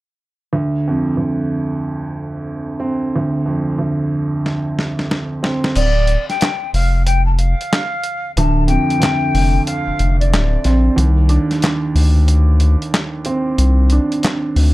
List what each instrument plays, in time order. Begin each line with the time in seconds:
0.53 grand piano D2
0.88 grand piano F2
1.17 grand piano D2
2.80 grand piano C4
3.16 grand piano D2
3.46 grand piano F2
3.79 grand piano D2
4.46 snare
4.79 snare
4.99 snare
5.11 snare
5.43 grand piano C4, snare
5.64 snare
5.75 sub bass D1, flute D5, closed hi-hat, crash
6.07 closed hi-hat
6.29 flute G5, snare, closed hi-hat
6.41 snare, clap, closed hi-hat
6.74 sub bass F1, flute F5, open hi-hat
7.05 flute G5, closed hi-hat
7.26 flute A5
7.38 flute F5, closed hi-hat
7.61 closed hi-hat
7.73 snare, clap, closed hi-hat
8.04 closed hi-hat
8.37 sub bass D1, grand piano D2, flute A5, closed hi-hat
8.68 grand piano F2, flute G5, closed hi-hat
8.90 closed hi-hat
9.00 grand piano D2, snare, clap, closed hi-hat
9.34 sub bass F1, open hi-hat
9.66 flute F5, closed hi-hat
9.87 sub bass F1
9.99 sub bass F1, closed hi-hat
10.20 flute D5, closed hi-hat
10.32 sub bass D1, snare, clap, closed hi-hat
10.64 sub bass A#1, grand piano C4, snare, closed hi-hat
10.96 sub bass C2, grand piano D#2, closed hi-hat
11.29 grand piano D4, closed hi-hat
11.51 snare, closed hi-hat
11.62 snare, clap, closed hi-hat
11.95 sub bass D2, open hi-hat
12.28 closed hi-hat
12.60 closed hi-hat
12.82 closed hi-hat
12.94 snare, clap, closed hi-hat
13.25 grand piano C4, closed hi-hat
13.58 sub bass C2, closed hi-hat
13.90 grand piano D4, closed hi-hat
14.12 closed hi-hat
14.23 snare, clap, closed hi-hat
14.56 sub bass D2, open hi-hat